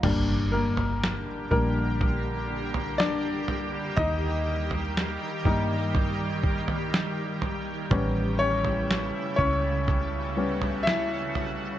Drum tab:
CC |x---------------|----------------|----------------|
SD |----o-------o---|----o-------o---|----o-------o---|
FT |o--o----o--o--o-|o--o----o--o--o-|o--o----o--o--o-|
BD |o-----o-o-------|o-----o-o-o-----|o-----o-o-------|